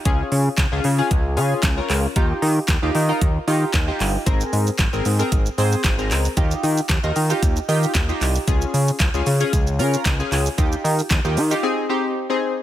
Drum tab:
HH |x-o-x-o-x-o-x-o-|x-o-x-o-x-o-x-o-|x-o-x-o-x-o-x-o-|x-o-x-o-x-o-x-o-|
SH |----------------|----------------|xxxxxxxxxxxxxxxx|xxxxxxxxxxxxxxxx|
CP |----x-------x-x-|----x-------x-x-|----x-------x-x-|----x-------x-x-|
SD |----o-------o---|----o-------o---|----o-------o---|----o-------o---|
BD |o---o---o---o---|o---o---o---o---|o---o---o---o---|o---o---o---o---|

HH |x-o-x-o-x-o-x-o-|x-o-x-o---------|
SH |xxxxxxxxxxxxxxxx|xxxxxxxx--------|
CP |----x-------x-x-|----x-----------|
SD |----o-------o---|----o-----------|
BD |o---o---o---o---|o---o-----------|